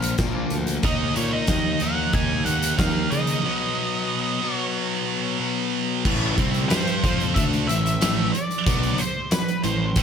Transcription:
Already playing: picked electric bass A#1, overdriven electric guitar A#2 F3 A#3, lead electric guitar F5
0.02 muted clean electric guitar stroke, closed hi-hat
0.18 picked electric bass A#1, overdriven electric guitar A#2 F3 A#3, kick, snare, closed hi-hat
0.35 clean electric guitar F3 A#3 D4 F4
0.50 picked electric bass D2, closed hi-hat
0.67 closed hi-hat
0.83 picked electric bass D#2, overdriven electric guitar D#3 A#3 D#4, lead electric guitar D#5, kick, closed hi-hat
1.16 picked electric bass A#2, lead electric guitar C#5, closed hi-hat
1.33 lead electric guitar D#5
1.47 picked electric bass D#2, kick, snare, closed hi-hat
1.80 picked electric bass D#2, overdriven electric guitar A#3 D#4, lead electric guitar F#5, closed hi-hat
1.84 overdriven electric guitar D#3
2.13 picked electric bass D#2, lead electric guitar G#5, kick, closed hi-hat
2.45 picked electric bass D#2, lead electric guitar F#5, closed hi-hat
2.62 closed hi-hat
2.78 picked electric bass D#2, overdriven electric guitar D#3 A#3 D#4, lead electric guitar F5, kick, snare, closed hi-hat
3.10 picked electric bass C#3, lead electric guitar D#5, closed hi-hat
3.27 closed hi-hat
3.44 overdriven electric guitar B2 F#3 B3
4.42 overdriven electric guitar B2 F#3 B3
4.55 lead electric guitar C#5
5.39 overdriven electric guitar B2 F#3 B3
6.05 picked electric bass A1, overdriven electric guitar A2 E3 A3, kick, crash
6.38 picked electric bass C2, overdriven electric guitar C3 G3 C4, kick, closed hi-hat
6.54 closed hi-hat
6.69 picked electric bass G2, overdriven electric guitar G3 D4 G4, lead electric guitar C5, snare, closed hi-hat
6.87 closed hi-hat
7.04 picked electric bass F2, overdriven electric guitar F3 C4 F4, kick, closed hi-hat
7.21 closed hi-hat
7.34 picked electric bass D2, overdriven electric guitar D3 A3 D4, lead electric guitar E5, kick, closed hi-hat
7.53 closed hi-hat
7.68 picked electric bass A1, overdriven electric guitar A2 E3, lead electric guitar E5, closed hi-hat
7.86 closed hi-hat
8.01 picked electric bass A1, overdriven electric guitar A2 E3 A3, snare, closed hi-hat
8.33 lead electric guitar D5, muted overdriven electric guitar stroke, muted picked electric bass stroke, muted distorted electric guitar stroke, closed hi-hat
8.51 closed hi-hat
8.66 picked electric bass B1, overdriven electric guitar B2 F#3 B3, kick, closed hi-hat
8.83 closed hi-hat
8.98 lead electric guitar C5, closed hi-hat
9.31 lead electric guitar B4, snare, closed hi-hat
9.48 closed hi-hat
9.64 picked electric bass A1, overdriven electric guitar A2 E3, lead electric guitar C5, closed hi-hat
9.96 picked electric bass A1, overdriven electric guitar A2 E3 A3, kick, closed hi-hat

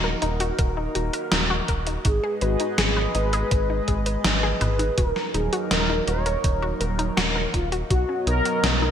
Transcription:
Already playing: analog synth bass D#1, analog synth pad D#4 F#4 A#4
0.04 synth arpeggio sound A#4
0.22 analog synth bass D#1, synth arpeggio sound D#4, closed hi-hat
0.40 synth arpeggio sound F#4, closed hi-hat
0.59 analog synth bass D#1, synth arpeggio sound A#4, kick, closed hi-hat
0.77 synth arpeggio sound D#4
0.95 analog synth bass D#1, synth arpeggio sound F#4, closed hi-hat
1.13 synth arpeggio sound A#4, closed hi-hat
1.32 analog synth bass D#1, synth arpeggio sound D#4, snare, closed hi-hat
1.50 synth arpeggio sound F#4
1.68 analog synth bass D#1, synth arpeggio sound A#4, kick, closed hi-hat
1.87 synth arpeggio sound D#4, closed hi-hat
2.05 analog synth bass G#1, analog synth pad G#3 G#4 B4 D#5, synth arpeggio sound D#4, analog polysynth G#4, kick, closed hi-hat
2.24 synth arpeggio sound G#4
2.41 analog synth bass G#1, analog polysynth F#4, synth arpeggio sound B4, closed hi-hat
2.60 synth arpeggio sound D#4, closed hi-hat
2.78 analog synth bass G#1, analog polysynth G#4, synth arpeggio sound G#4, snare, closed hi-hat
2.97 synth arpeggio sound B4
3.15 analog synth bass G#1, synth arpeggio sound D#4, analog polysynth B4, closed hi-hat
3.33 synth arpeggio sound G#4, closed hi-hat
3.51 analog synth bass G#1, synth arpeggio sound B4, kick, closed hi-hat
3.70 synth arpeggio sound D#4
3.88 analog synth bass G#1, synth arpeggio sound G#4, kick, closed hi-hat
4.06 synth arpeggio sound B4, closed hi-hat
4.24 analog synth bass G#1, synth arpeggio sound D#4, snare, closed hi-hat
4.43 synth arpeggio sound G#4
4.61 analog synth bass G#1, analog polysynth B4, synth arpeggio sound B4, closed hi-hat, mid tom
4.79 synth arpeggio sound D#4, closed hi-hat
4.98 analog synth bass D#1, analog synth pad F#3 D#4 A#4, synth arpeggio sound F#4, analog polysynth A#4, kick, closed hi-hat
5.16 synth arpeggio sound A#4, snare
5.34 analog synth bass D#1, synth arpeggio sound D#4, analog polysynth G#4, closed hi-hat
5.53 synth arpeggio sound F#4, closed hi-hat
5.70 analog synth bass D#1, analog polysynth A#4, synth arpeggio sound A#4, snare, closed hi-hat
5.90 synth arpeggio sound D#4
6.07 analog synth bass D#1, synth arpeggio sound F#4, analog polysynth C#5, closed hi-hat
6.26 synth arpeggio sound A#4, closed hi-hat
6.44 analog synth bass D#1, synth arpeggio sound D#4, kick, closed hi-hat
6.62 synth arpeggio sound F#4
6.80 analog synth bass D#1, synth arpeggio sound A#4, closed hi-hat
6.99 synth arpeggio sound D#4, closed hi-hat
7.17 analog synth bass D#1, synth arpeggio sound F#4, snare, closed hi-hat
7.36 synth arpeggio sound A#4
7.54 analog synth bass D#1, synth arpeggio sound D#4, analog polysynth F4, kick, closed hi-hat
7.72 synth arpeggio sound F#4, closed hi-hat
7.90 analog synth bass B1, analog synth pad B3 C#5 D#5, synth arpeggio sound F#4, analog polysynth F#4, kick, closed hi-hat
8.09 synth arpeggio sound C#4
8.27 analog synth bass B1, synth arpeggio sound D#4, analog polysynth A#4, closed hi-hat
8.45 synth arpeggio sound F#4, closed hi-hat
8.63 analog synth bass B1, synth arpeggio sound C#4, snare, closed hi-hat
8.82 synth arpeggio sound D#4

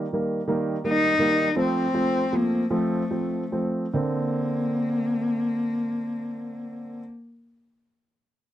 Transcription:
0.13 grand piano D#3 G3 A#3
0.48 grand piano D#3 G3 A#3
0.84 grand piano D#3 G3 A#3, cello D#4
1.19 grand piano D#3 G3 A#3
1.56 grand piano F3 A3 C4, cello C4
1.94 grand piano F3 A3 C4
2.32 grand piano F3 A3 C4
2.37 cello A#3
2.70 grand piano F3 A3 C4
2.75 cello A3
3.11 grand piano F3 A3 C4
3.52 grand piano F3 A3 C4
3.94 grand piano D3 A#3 C4, cello A#3

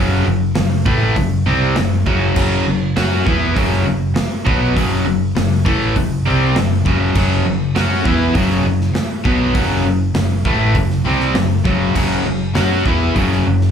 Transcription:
Already playing: fingered electric bass F#1, overdriven electric guitar F#2 C#3 F#3
0.25 fingered electric bass F#1, overdriven electric guitar F#2 C#3
0.55 fingered electric bass F#1, overdriven electric guitar F#2 C#3, snare, open hi-hat
0.86 fingered electric bass A1, overdriven electric guitar A2 E3 A3, kick
1.16 fingered electric bass F#1, overdriven electric guitar F#2 C#3, kick, open hi-hat
1.46 fingered electric bass C2, overdriven electric guitar C3 G3 C4
1.76 fingered electric bass F#1, overdriven electric guitar F#2 C#3, snare, open hi-hat
2.06 fingered electric bass F#1, overdriven electric guitar F#2 C#3 F#3, kick
2.36 fingered electric bass F#1, overdriven electric guitar F#2 C#3 F#3, kick, crash
2.67 fingered electric bass F#1, overdriven electric guitar F#2 C#3
2.96 fingered electric bass F#2, overdriven electric guitar F#3 C#4 F#4, snare, open hi-hat
3.27 fingered electric bass E2, overdriven electric guitar E3 B3 E4, kick
3.56 fingered electric bass F#1, overdriven electric guitar F#2 C#3 F#3, kick, open hi-hat
3.72 snare
3.86 fingered electric bass F#1, overdriven electric guitar F#2 C#3
4.16 muted overdriven electric guitar stroke, muted fingered electric bass stroke, snare, open hi-hat
4.46 fingered electric bass B1, overdriven electric guitar B2 F#3 B3, kick
4.75 fingered electric bass F#1, overdriven electric guitar F#2 C#3 F#3, kick, open hi-hat
5.06 fingered electric bass F#1, overdriven electric guitar F#2 C#3
5.35 fingered electric bass F#1, overdriven electric guitar F#2 C#3, snare, open hi-hat
5.65 fingered electric bass A1, overdriven electric guitar A2 E3 A3, kick
5.96 fingered electric bass F#1, overdriven electric guitar F#2 C#3, kick, open hi-hat
6.26 fingered electric bass C2, overdriven electric guitar C3 G3 C4
6.56 fingered electric bass F#1, overdriven electric guitar F#2 C#3, snare, open hi-hat
6.85 fingered electric bass F#1, overdriven electric guitar F#2 C#3 F#3, kick
7.15 fingered electric bass F#1, overdriven electric guitar F#2 C#3 F#3, kick, crash
7.46 fingered electric bass F#1, overdriven electric guitar F#2 C#3
7.76 fingered electric bass F#2, overdriven electric guitar F#3 C#4 F#4, snare, open hi-hat
8.05 fingered electric bass E2, overdriven electric guitar E3 B3 E4, kick
8.35 fingered electric bass F#1, overdriven electric guitar F#2 C#3 F#3, kick, open hi-hat
8.50 snare
8.64 fingered electric bass F#1, overdriven electric guitar F#2 C#3
8.81 snare
8.94 muted fingered electric bass stroke, muted overdriven electric guitar stroke, snare, open hi-hat
9.24 fingered electric bass B1, overdriven electric guitar B2 F#3 B3, kick
9.54 fingered electric bass F#1, overdriven electric guitar F#2 C#3 F#3, kick, open hi-hat
9.84 fingered electric bass F#1, overdriven electric guitar F#2 C#3
10.15 fingered electric bass F#1, overdriven electric guitar F#2 C#3, snare, open hi-hat
10.45 fingered electric bass A1, overdriven electric guitar A2 E3 A3, kick
10.75 fingered electric bass F#1, overdriven electric guitar F#2 C#3, kick, open hi-hat
10.90 snare
11.05 fingered electric bass C2, overdriven electric guitar C3 G3 C4
11.20 snare
11.34 fingered electric bass F#1, overdriven electric guitar F#2 C#3, snare, open hi-hat
11.65 fingered electric bass F#1, overdriven electric guitar F#2 C#3 F#3, kick
11.95 fingered electric bass F#1, overdriven electric guitar F#2 C#3 F#3, kick, crash
12.24 fingered electric bass F#1, overdriven electric guitar F#2 C#3
12.54 fingered electric bass F#2, overdriven electric guitar F#3 C#4 F#4, snare, open hi-hat
12.85 fingered electric bass E2, overdriven electric guitar E3 B3 E4, kick
13.15 fingered electric bass F#1, overdriven electric guitar F#2 C#3 F#3, kick, open hi-hat
13.32 snare
13.46 fingered electric bass F#1, overdriven electric guitar F#2 C#3
13.61 snare

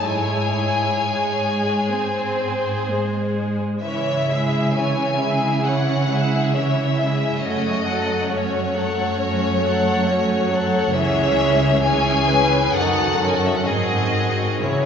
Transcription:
0.03 cello section G#2, viola section G#3 E4, violin section G#4 C#5 G#5
1.00 viola section G#3
1.91 viola section C4, violin section C5
2.88 viola section G#3
3.81 cello section C#3, viola section E3 C#4, violin section E4 C#5 E5
4.28 viola section G#3 E4, violin section G#4 E5
4.74 viola section E3 C#4, violin section E4 C#5 G#5
5.21 viola section G#3 E4, violin section G#4 E5
5.65 viola section E3 C#4, violin section E4 C#5 F#5
6.11 viola section G#3 E4, violin section G#4 E5
6.54 viola section E3 C#4, violin section E4 C#5 E5
6.99 viola section G#3 E4, violin section G#4 E5
7.41 cello section F#2, viola section A3 C#4, violin section F#4 C#5 D#5
7.87 viola section F#3 A3, violin section A4 F#5
8.29 viola section A3 C#4, violin section F#4 C#5
8.74 viola section F#3 A3, violin section A4 F#5
9.17 viola section A3 C#4, violin section F#4 C#5
9.61 viola section F#3 A3, violin section F#5
9.65 violin section A4
10.06 viola section A3 C#4, violin section F#4 C#5
10.49 viola section F#3 A3, violin section A4 F#5
10.94 cello section C#2, viola section E3 C#4, violin section G#4 C#5 E5
11.82 viola section E3 C#4, violin section G#4 C#5 G#5
12.28 violin section B4
12.74 cello section F#2, viola section D#3 D#4, violin section F#4 A4 F#5
13.21 viola section C#4
13.29 violin section G#5
13.37 violin section F#5
13.46 violin section E5
13.56 violin section F#5
13.65 cello section G#2, viola section D#3 C4, violin section F#4 G#4 D#5
14.61 cello section C#3, viola section E3 C#4, violin section E4 G#4 C#5

